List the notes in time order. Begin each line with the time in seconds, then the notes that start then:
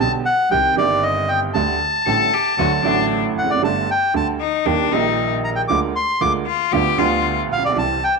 0.00 B1 B2 D3 G3 B3 G4 A5
0.25 F#5
0.50 C2 C3 D#3 G3 C4 G4 G5
0.76 G1 G2 D#3 G3 C4 D5
0.81 G4
1.03 D#5
1.28 G5
1.54 D2 D3 G3 A3 G4 A5
2.06 A1 A2 D3 G3 A3 G4 A4
2.33 G4
2.58 D2 D3 F#3 A3 F#4
2.83 A1 A2 D3 F#3 A3 D4
2.87 F#4
3.36 F1 F#5
3.44 E2
3.50 F2 D5
3.56 F#2
3.62 G1 G2 D3 G3 A3 G4 A5
3.91 G5
4.14 D2 D3 G3 A3 G4 A5
4.40 D#4
4.65 D#2 D#3 G3 A#3 D4 G4
4.92 A#1 A#2 D#3 G3 A#3 D#4 G4
5.44 A#5
5.56 G5
5.68 D2 D3 G#3 A#3 F4 D6
5.96 C6
6.21 D2 D3 G#3 A#3 F4 D6
6.46 F4
6.72 D2 D3 G3 B3 F4 G4
6.98 D2 D3 G3 B3 F4
7.50 A#1 F5
7.57 A1
7.65 A#1 D5
7.70 B1
7.75 C2 C3 E3 G3 C4 G4 A5
8.04 G5